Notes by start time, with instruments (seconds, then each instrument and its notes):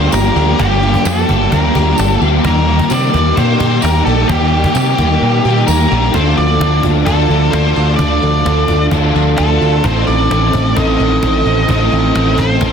Already playing: clean electric guitar G2 D3 F3 F4, overdriven electric guitar G2 D3 G3 A#3 D4 G4, twelve-string acoustic guitar F3 A#3 D4, ambient pad A#3 F5 G5 D6, lead electric guitar C5
0.12 picked electric bass G1, overdriven electric guitar G3 A#3 D4 G4, lead electric guitar A#4, cajon slap, tambourine
0.34 picked electric bass D2, clean electric guitar F3 F4, overdriven electric guitar G3 A#3 D4 G4
0.57 picked electric bass G1, overdriven electric guitar G2 D3 G3 A#3 D4 G4, clean electric guitar F3 F4, twelve-string acoustic guitar F3, lead electric guitar G4, cajon bass
0.81 clean electric guitar F3 F4, overdriven electric guitar G3 A#3 D4 G4
0.94 cajon bass
1.04 picked electric bass F2, clean electric guitar F3 F4, twelve-string acoustic guitar F3, overdriven electric guitar G3 A#3 D4 G4, lead electric guitar A4, cajon slap, tambourine
1.27 picked electric bass G1, overdriven electric guitar G2 D3 G3 A#3 D4 G4, clean electric guitar F3 F4, cajon bass
1.51 picked electric bass D2, clean electric guitar G2 D3 F3 F4, overdriven electric guitar G3 A#3 D4 G4, lead electric guitar A#4, cajon bass
1.73 picked electric bass D2, overdriven electric guitar G2 D3 G3 A#3 D4 G4, clean electric guitar F3 F4, cajon bass
1.96 picked electric bass G1, overdriven electric guitar G3 A#3 D4 G4, lead electric guitar A4, cajon slap, tambourine
2.19 picked electric bass D2, clean electric guitar F3 F4, overdriven electric guitar G3 A#3 D4 G4
2.44 picked electric bass D#2, overdriven electric guitar D#3 G3 A#3 D#4 G4, ambient pad D#4, lead electric guitar A#4, cajon bass
2.66 overdriven electric guitar A#3 D#4 G4
2.79 cajon bass
2.90 picked electric bass C3, overdriven electric guitar G3 A#3 D#4 G4, lead electric guitar D5, cajon slap, tambourine
3.13 picked electric bass D#2, overdriven electric guitar D#3 G3 A#3 D#4 G4, cajon bass, cajon slap
3.36 picked electric bass A#2, clean electric guitar D#3, overdriven electric guitar G3 A#3 D#4 G4, lead electric guitar C5, cajon bass
3.58 picked electric bass A#2, overdriven electric guitar D#3 G3 A#3 D#4 G4, cajon bass
3.81 picked electric bass D#2, overdriven electric guitar G3 A#3 D#4 G4, lead electric guitar A#4, cajon slap, tambourine
4.05 picked electric bass A#1, overdriven electric guitar A#3 D#4 G4, lead electric guitar A4
4.28 picked electric bass D#2, overdriven electric guitar D#3 G3 A#3 D#4 G4, lead electric guitar G4, cajon bass
4.52 overdriven electric guitar A#3 D#4 G4
4.64 cajon bass
4.75 picked electric bass C3, overdriven electric guitar G3 A#3 D#4 G4, cajon slap, tambourine
4.97 picked electric bass D#2, overdriven electric guitar D#3 G3 A#3 D#4 G4, cajon bass, cajon slap
5.21 picked electric bass A#2, clean electric guitar D#3, overdriven electric guitar G3 A#3 D#4 G4
5.43 picked electric bass A#2, overdriven electric guitar D#3 G3 A#3 D#4 G4
5.67 picked electric bass D#2, overdriven electric guitar G3 A#3 D#4 G4, lead electric guitar A#4, tambourine
5.91 picked electric bass A#1, overdriven electric guitar A#3 D#4 G4, clean electric guitar D4
6.13 picked electric bass D2, overdriven electric guitar D3 A3 D4 F4 A4, twelve-string acoustic guitar F3, ambient pad A4 D5 F5 D6, lead electric guitar C5, cajon bass
6.37 picked electric bass D2, twelve-string acoustic guitar F3, lead electric guitar D5
6.59 picked electric bass D2, clean electric guitar D3, overdriven electric guitar A3 D4 F4 A4, cajon slap
6.83 picked electric bass D2, twelve-string acoustic guitar D4, cajon bass
7.06 picked electric bass D2, overdriven electric guitar D3 A3 D4 F4 A4, lead electric guitar A4, cajon bass
7.29 picked electric bass D2, twelve-string acoustic guitar F3, overdriven electric guitar D4 F4 A4
7.42 cajon slap
7.50 picked electric bass D2, overdriven electric guitar A3 D4 F4, lead electric guitar C5, cajon slap
7.55 overdriven electric guitar A4
7.66 cajon slap
7.75 picked electric bass D2, twelve-string acoustic guitar D4, clean electric guitar D4 F4 A4
7.96 picked electric bass D2, overdriven electric guitar D3 A3, twelve-string acoustic guitar F3, lead electric guitar D5, cajon bass
8.00 overdriven electric guitar D4 F4 A4, ambient pad C6
8.22 picked electric bass D2, twelve-string acoustic guitar F3
8.44 picked electric bass D2, clean electric guitar D3, overdriven electric guitar A3 D4 F4 A4, cajon slap
8.68 picked electric bass D2, twelve-string acoustic guitar D4, cajon bass
8.91 picked electric bass D2, overdriven electric guitar D3 A3 D4 F4 A4, cajon bass
9.14 picked electric bass D2, twelve-string acoustic guitar F3, overdriven electric guitar D4 F4 A4
9.37 picked electric bass D2, overdriven electric guitar A3 D4 F4 A4, lead electric guitar A4, cajon slap
9.60 picked electric bass D2, twelve-string acoustic guitar D4, clean electric guitar D4 F4 A4
9.84 picked electric bass A1, overdriven electric guitar A2 A3 C4 D#4 A4, twelve-string acoustic guitar D#3, ambient pad D#4 A4 C5, lead electric guitar C5, cajon bass
10.07 picked electric bass A1, twelve-string acoustic guitar D#3, lead electric guitar D5
10.29 picked electric bass A1, overdriven electric guitar A3 C4 D#4 A4, cajon slap
10.53 picked electric bass A1, twelve-string acoustic guitar C4, cajon bass
10.75 picked electric bass A1, overdriven electric guitar A2 A3 C4 D#4 A4, lead electric guitar D#5, cajon bass
10.99 picked electric bass A1, twelve-string acoustic guitar D#3, overdriven electric guitar C4 D#4 A4
11.12 cajon slap
11.22 picked electric bass A1, overdriven electric guitar A3 C4 D#4 A4, cajon slap
11.35 cajon slap
11.45 picked electric bass A1, twelve-string acoustic guitar C4, clean electric guitar C4 D#4 A4
11.68 picked electric bass A1, overdriven electric guitar A2 A3 C4 D#4 A4, twelve-string acoustic guitar D#3, lead electric guitar D#5, ambient pad F5, cajon bass
11.92 picked electric bass A1, twelve-string acoustic guitar D#3
12.14 picked electric bass A1, overdriven electric guitar A3 C4 D#4 A4, cajon slap
12.38 picked electric bass A1, twelve-string acoustic guitar C4, lead electric guitar C5, cajon bass
12.59 picked electric bass A1, overdriven electric guitar A2 A3 C4 D#4 A4, cajon bass